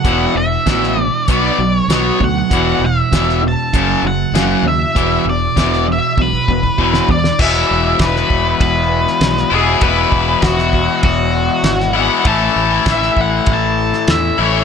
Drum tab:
CC |----------------|----------------|----------------|x---------------|
RD |----------------|----------------|----------------|----b---b---b---|
HH |x---x---x---x---|x---x---x---x---|x---x-----------|----------------|
SD |----oo------o---|----oo------o---|----oo-------o-o|----oo-----ooo--|
BD |o---o---o-----o-|o---o---o-------|o---o---ooooo-o-|o---o-o-o-------|

CC |----------------|----------------|
RD |b---b---b---b---|b---b---b---b---|
HH |----------------|----------------|
SD |----oo------oo--|----oo-----oo---|
BD |o-o-o-o-o-------|o---o-o-o-------|